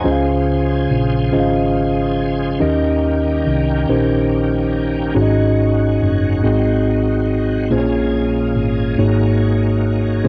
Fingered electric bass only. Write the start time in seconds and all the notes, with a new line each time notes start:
0.05 C#2
0.91 A#1
1.35 G#1
2.62 D#2
3.47 C2
3.89 A#1
5.16 G#1
6.02 F#1
6.45 G#1
7.72 A#1
8.56 G#1
8.98 G#1